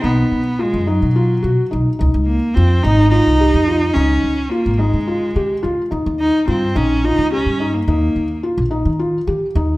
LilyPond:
<<
  \new Staff \with { instrumentName = "Felt piano" } { \time 7/8 \key des \lydian \tempo 4 = 107 ees'4 f'8 ees'8 f'8 ges'8 ees'8 | ees'4 f'8 ees'8 f'8 g'8 f'8 | ees'4 f'8 ees'8 f'8 g'8 f'8 | ees'4 f'8 ees'8 f'8 g'8 ees'8 |
ees'4 f'8 ees'8 f'8 g'8 ees'8 | }
  \new Staff \with { instrumentName = "Cello" } { \time 7/8 \key des \lydian ces'4 aes8 ges4. r8 | r8 bes8 c'8 ees'8 ees'4. | des'4 bes8 aes4. r8 | r8 ees'8 c'8 des'8 ees'8 des'8. bes16 |
bes4 r2 r8 | }
  \new Staff \with { instrumentName = "Upright bass" } { \clef bass \time 7/8 \key des \lydian ces,8 ces,8 r16 ges,8 ces8. ces16 r16 ces,16 r16 | des,16 des,8 r16 f,8 aes,,8. c,8 f,8. | des,8 des,8 r16 aes,,8 des8. des16 r16 des,16 r16 | ees,16 ees,8 r16 g,8 bes,,8. des,8 g,8. |
ees,8 ees,8 r16 bes,,8 ees8. ees16 r16 ees,8 | }
>>